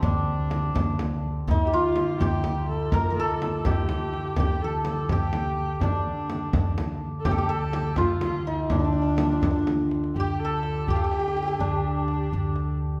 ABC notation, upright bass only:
X:1
M:6/8
L:1/8
Q:3/8=83
K:none
V:1 name="Upright bass" clef=bass
D,,3 D,,3 | D,,3 D,,3 | D,,3 D,,3 | D,,3 D,,3 |
D,,3 D,,3 | D,,3 D,,3 | D,,3 D,,3 | D,,3 D,,3 |
D,,3 D,,3 |]